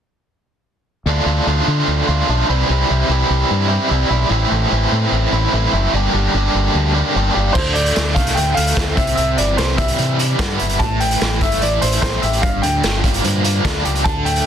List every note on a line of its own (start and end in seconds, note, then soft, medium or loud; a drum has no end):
1.06 1.19 D2 medium
1.06 1.45 D3 medium
1.06 1.28 A3 medium
1.06 1.26 D4 medium
1.06 1.24 F4 medium
1.26 1.39 D2 medium
1.26 1.46 A3 soft
1.26 1.47 D4 medium
1.26 1.48 F4 medium
1.46 1.60 D2 medium
1.46 2.27 D3 medium
1.46 2.09 A3 medium
1.46 2.08 D4 medium
1.46 2.06 F4 medium
1.67 1.81 D3 medium
1.88 2.01 D2 medium
2.08 2.21 D2 medium
2.08 2.28 A3 medium
2.08 2.29 D4 medium
2.08 2.30 F4 medium
2.28 2.42 B1 medium
2.28 2.47 D3 medium
2.28 2.47 A3 medium
2.28 2.48 D4 medium
2.28 2.48 F4 medium
2.49 2.62 C2 medium
2.49 2.67 C3 medium
2.49 2.69 E3 medium
2.49 2.70 G3 medium
2.49 2.71 C4 medium
2.49 2.71 E4 medium
2.69 2.83 C2 medium
2.69 3.08 C3 medium
2.69 3.09 E3 medium
2.69 2.92 G3 medium
2.69 2.91 C4 medium
2.69 2.89 E4 medium
2.89 3.03 C2 medium
2.89 3.10 G3 soft
2.89 3.11 C4 medium
2.89 3.12 E4 medium
3.09 3.22 C2 medium
3.09 3.90 C3 medium
3.09 3.88 E3 medium
3.09 3.72 G3 medium
3.09 3.69 C4 medium
3.09 3.67 E4 medium
3.30 3.43 C2 medium
3.51 3.77 G2 medium
3.69 3.90 G3 medium
3.69 3.91 C4 medium
3.69 3.91 E4 medium
3.89 4.04 C2 medium
3.89 4.29 E3 medium
3.89 4.13 G3 medium
3.89 4.10 C4 medium
3.89 4.09 E4 medium
4.10 4.24 B1 medium
4.10 4.31 G3 medium
4.10 4.30 C4 medium
4.10 4.29 E4 medium
4.29 4.44 A1 medium
4.29 4.69 A2 medium
4.29 4.70 E3 medium
4.29 4.52 A3 medium
4.29 4.50 C4 medium
4.29 4.49 E4 medium
4.50 4.65 A1 medium
4.50 4.71 A3 soft
4.50 4.72 C4 medium
4.50 4.72 E4 medium
4.70 4.85 A1 medium
4.70 5.52 A2 medium
4.70 5.52 E3 medium
4.70 5.35 A3 medium
4.70 5.33 C4 medium
4.70 5.31 E4 medium
4.92 5.05 A2 medium
5.12 5.25 A1 medium
5.32 5.46 A1 medium
5.32 5.53 A3 medium
5.32 5.54 C4 medium
5.32 5.55 E4 medium
5.53 5.66 A1 medium
5.53 5.92 E3 medium
5.53 5.75 A3 medium
5.53 5.73 C4 medium
5.53 5.72 E4 medium
5.73 5.86 F#1 medium
5.73 5.94 A3 medium
5.73 5.93 C4 medium
5.73 5.92 E4 medium
5.93 6.07 G1 medium
5.93 6.33 G2 medium
5.93 6.33 D3 medium
5.93 6.16 G3 medium
5.93 6.15 A#3 medium
5.93 6.14 D4 medium
5.93 6.13 G4 medium
6.14 6.27 G1 medium
6.14 6.34 G3 soft
6.14 6.35 A#3 soft
6.14 6.36 D4 medium
6.14 6.36 G4 medium
6.34 6.47 G1 medium
6.34 7.15 G2 medium
6.34 7.15 D3 medium
6.34 6.97 G3 medium
6.34 6.96 A#3 medium
6.34 6.95 D4 medium
6.34 6.93 G4 medium
6.54 6.68 G1 medium
6.75 7.01 D2 medium
6.94 7.13 G3 medium
6.94 7.15 A#3 medium
6.94 7.16 D4 medium
6.94 7.16 G4 medium
7.14 7.29 G1 medium
7.14 7.36 G3 medium
7.14 7.36 A#3 medium
7.14 7.34 D4 medium
7.14 7.34 G4 medium
7.35 7.49 G1 medium
7.35 7.56 G3 medium
7.35 7.55 A#3 medium
7.35 7.55 D4 medium
7.35 7.54 G4 medium
7.53 7.91 D2 medium
7.53 7.96 D3 medium
7.53 7.73 C5 medium
7.53 kick loud
7.53 crash medium
7.73 8.15 A3 medium
7.73 8.12 D5 medium
7.73 closed hi-hat medium
7.86 closed hi-hat soft
7.96 8.14 D2 medium
7.96 8.35 D3 medium
7.96 snare medium
7.96 closed hi-hat medium
8.14 8.34 C2 medium
8.14 8.56 A3 medium
8.14 8.36 F5 medium
8.14 kick medium
8.14 closed hi-hat medium
8.27 snare soft
8.27 closed hi-hat medium
8.35 8.55 D2 medium
8.35 8.98 D3 medium
8.35 8.55 G5 medium
8.35 closed hi-hat medium
8.54 8.75 D2 medium
8.54 8.98 A3 medium
8.54 8.98 F5 loud
8.54 closed hi-hat medium
8.67 closed hi-hat medium
8.77 8.95 D2 medium
8.77 10.39 C4 medium
8.77 kick medium
8.77 snare loud
8.77 closed hi-hat medium
8.95 9.15 C2 medium
8.95 9.16 C3 medium
8.95 9.14 E5 medium
8.95 kick medium
8.95 closed hi-hat medium
9.07 closed hi-hat medium
9.15 9.36 C2 medium
9.15 10.19 C3 medium
9.15 9.38 E5 medium
9.15 closed hi-hat medium
9.37 9.56 G1 medium
9.37 9.57 E3 medium
9.37 9.58 D5 medium
9.37 closed hi-hat medium
9.57 9.94 C2 medium
9.57 9.98 E3 medium
9.57 9.79 C5 medium
9.57 snare loud
9.57 closed hi-hat medium
9.77 10.19 G3 medium
9.77 10.16 E5 medium
9.77 kick medium
9.77 closed hi-hat medium
9.88 closed hi-hat medium
9.98 10.34 C3 medium
9.98 10.80 E3 medium
9.98 closed hi-hat soft
10.19 10.84 G3 medium
10.19 closed hi-hat medium
10.39 10.57 G2 medium
10.39 10.80 B3 medium
10.39 kick medium
10.39 snare loud
10.39 closed hi-hat medium
10.59 10.78 G1 medium
10.59 10.81 E4 medium
10.59 closed hi-hat soft
10.69 closed hi-hat medium
10.79 11.15 A1 medium
10.79 11.82 A2 medium
10.79 10.99 A5 loud
10.79 kick loud
10.79 closed hi-hat medium
11.00 11.20 E3 medium
11.00 11.38 G5 medium
11.00 closed hi-hat medium
11.11 closed hi-hat medium
11.21 11.39 A1 medium
11.21 11.61 E3 medium
11.21 snare loud
11.21 closed hi-hat medium
11.41 11.59 G1 medium
11.41 11.81 A3 medium
11.41 11.62 E5 medium
11.41 kick medium
11.41 closed hi-hat medium
11.52 closed hi-hat medium
11.61 11.80 A1 medium
11.61 12.43 E3 medium
11.61 11.82 D5 medium
11.61 closed hi-hat medium
11.81 12.00 A1 medium
11.81 12.43 A3 medium
11.81 12.00 C5 medium
11.81 closed hi-hat medium
11.92 closed hi-hat medium
12.02 12.20 A1 medium
12.02 12.43 C4 medium
12.02 12.21 C5 medium
12.02 kick medium
12.02 snare loud
12.02 closed hi-hat medium
12.22 12.40 A1 medium
12.22 12.43 G4 medium
12.22 12.43 E5 medium
12.22 closed hi-hat medium
12.33 closed hi-hat medium
12.42 12.61 G1 medium
12.42 13.44 G2 medium
12.42 12.63 F5 medium
12.42 kick loud
12.42 closed hi-hat medium
12.62 12.81 D2 medium
12.62 13.65 D3 medium
12.62 13.40 G5 medium
12.62 closed hi-hat medium
12.83 13.19 G1 medium
12.83 13.23 F3 medium
12.83 snare loud
12.83 closed hi-hat medium
13.04 13.44 A#3 medium
13.04 kick medium
13.04 closed hi-hat medium
13.14 closed hi-hat medium
13.24 13.59 G2 medium
13.24 14.04 F3 medium
13.24 closed hi-hat medium
13.44 14.05 A#3 medium
13.44 closed hi-hat medium
13.64 13.82 D2 medium
13.64 14.06 D4 medium
13.64 kick medium
13.64 snare loud
13.64 closed hi-hat medium
13.85 14.03 C#2 medium
13.85 14.05 G4 medium
13.85 closed hi-hat medium
13.95 closed hi-hat soft
14.04 14.40 D2 medium
14.04 14.46 D3 medium
14.04 14.26 A5 loud
14.04 kick loud
14.04 closed hi-hat medium
14.25 14.46 A3 medium
14.25 14.46 G5 medium
14.25 closed hi-hat medium
14.36 closed hi-hat medium